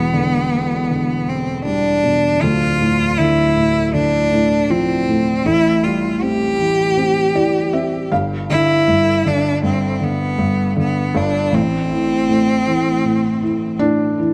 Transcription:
Already playing: felt piano E1 E2 B2, cello B3
0.14 felt piano D3
0.90 felt piano D3
1.28 cello C4
1.65 felt piano G3, cello D4
2.04 felt piano B2
2.41 felt piano D1 D2, cello F4
2.81 felt piano A2
3.17 felt piano D3, cello E4
3.56 felt piano A2
3.93 felt piano D3, cello D4
4.32 felt piano A2
4.70 felt piano F3, cello C4
5.09 felt piano A2
5.45 felt piano A1 A2, cello E4
5.84 felt piano G3, cello F4
6.22 felt piano C4, cello G4
6.59 felt piano E3
6.97 felt piano C4
7.35 felt piano E3 D5
7.73 felt piano C4 E5
8.12 felt piano G1 G2 F5
8.49 felt piano D3, cello E4
8.88 felt piano G2
9.25 felt piano D3, cello D4
9.63 felt piano G2, cello C4
10.00 felt piano D3, cello B3
10.38 felt piano G2
10.76 felt piano D3, cello B3
11.14 felt piano G1 G2, cello D4
11.52 felt piano A1 A2, cello C4
11.91 felt piano E3
12.29 felt piano A2
12.67 felt piano E3
13.05 felt piano A2
13.43 felt piano E3
13.79 felt piano A2 D4
14.19 felt piano E3

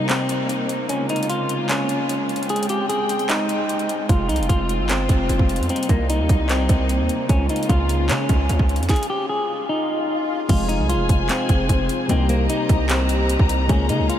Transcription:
Already playing: string section C3 G3 A#3 D#4
0.09 clean electric guitar C4, clap, closed hi-hat
0.29 closed hi-hat
0.49 closed hi-hat
0.69 closed hi-hat
0.89 string section C#3 G#3 F4, clean electric guitar C#4, closed hi-hat
1.09 clean electric guitar D#4, closed hi-hat
1.16 closed hi-hat
1.23 closed hi-hat
1.30 clean electric guitar F4, closed hi-hat
1.49 closed hi-hat
1.69 clean electric guitar C#4, clap, closed hi-hat
1.89 closed hi-hat
2.09 closed hi-hat
2.29 closed hi-hat
2.36 closed hi-hat
2.43 closed hi-hat
2.49 string section C4 G5, clean electric guitar G#4, closed hi-hat
2.56 closed hi-hat
2.63 closed hi-hat
2.69 clean electric guitar G4, closed hi-hat
2.89 clean electric guitar G#4, closed hi-hat
3.09 closed hi-hat
3.19 closed hi-hat
3.29 clean electric guitar D#4, clap, closed hi-hat
3.49 closed hi-hat
3.69 closed hi-hat
3.79 closed hi-hat
3.89 closed hi-hat
4.09 808-style bass F1, string section C4 F4, clean electric guitar F4, kick, closed hi-hat
4.29 808-style bass C2, clean electric guitar D#4, closed hi-hat
4.36 808-style bass F1, closed hi-hat
4.43 closed hi-hat
4.49 808-style bass F1, clean electric guitar F4, kick, closed hi-hat
4.69 closed hi-hat
4.79 808-style bass G1
4.89 clean electric guitar C4, clap, closed hi-hat
5.09 808-style bass F1, kick, closed hi-hat
5.29 808-style bass F1, closed hi-hat
5.39 808-style bass F1, kick
5.49 closed hi-hat
5.56 808-style bass F2, closed hi-hat
5.63 closed hi-hat
5.69 string section C3 G3 A#3 D#4, clean electric guitar C4, closed hi-hat
5.76 closed hi-hat
5.83 closed hi-hat
5.89 808-style bass C2, clean electric guitar A#3, kick, closed hi-hat
6.10 clean electric guitar D#4, closed hi-hat
6.19 808-style bass D#2
6.29 808-style bass C2, kick, closed hi-hat
6.49 clean electric guitar C4, clap, closed hi-hat
6.69 808-style bass C2, kick, closed hi-hat
6.89 closed hi-hat
6.99 808-style bass D#2
7.09 closed hi-hat
7.29 808-style bass C#2, string section C#3 G#3 F4, clean electric guitar C#4, kick, closed hi-hat
7.49 clean electric guitar D#4, closed hi-hat
7.56 closed hi-hat
7.63 closed hi-hat
7.69 808-style bass C#2, clean electric guitar F4, kick, closed hi-hat
7.89 closed hi-hat
8.09 808-style bass C#3, clean electric guitar C#4, clap, closed hi-hat
8.29 808-style bass C#2, kick, closed hi-hat
8.49 808-style bass C#2, closed hi-hat
8.59 808-style bass C#2, kick
8.69 closed hi-hat
8.76 808-style bass F2, closed hi-hat
8.83 closed hi-hat
8.89 clean electric guitar G#4, kick, snare, closed hi-hat, swell
8.96 closed hi-hat
9.03 closed hi-hat
9.10 clean electric guitar G4
9.29 clean electric guitar G#4
9.69 clean electric guitar D#4
10.48 808-style bass F1, synth keys C3 F3 G#3 F4 G#4, string section F4 G#4 C5 G#5, clean electric guitar F4, kick, closed hi-hat, crash
10.69 clean electric guitar D#4, closed hi-hat
10.79 808-style bass C2
10.89 clean electric guitar F4, closed hi-hat
10.94 808-style bass F1
11.09 808-style bass F1, kick, closed hi-hat
11.29 clean electric guitar C4, clap, closed hi-hat
11.49 808-style bass F1, kick, closed hi-hat
11.69 808-style bass F1, kick, closed hi-hat
11.89 closed hi-hat
12.07 808-style bass C2, synth keys C3 G3 A#3 D#4 G4, clean electric guitar C4, string section G4 D#5 A#5, closed hi-hat
12.29 clean electric guitar A#3, closed hi-hat
12.50 clean electric guitar D#4, closed hi-hat
12.69 808-style bass C2, kick, closed hi-hat
12.89 clean electric guitar C4, clap, closed hi-hat
13.09 closed hi-hat
13.29 closed hi-hat
13.39 808-style bass C2, kick
13.49 closed hi-hat
13.68 808-style bass C#2, synth keys C#3 G#3 A#3 F4 G#4, string section G#3 C#5 F5, clean electric guitar C#4, kick, closed hi-hat
13.89 808-style bass C#3, clean electric guitar D#4, closed hi-hat
13.99 808-style bass C#2
14.09 clean electric guitar F4, closed hi-hat

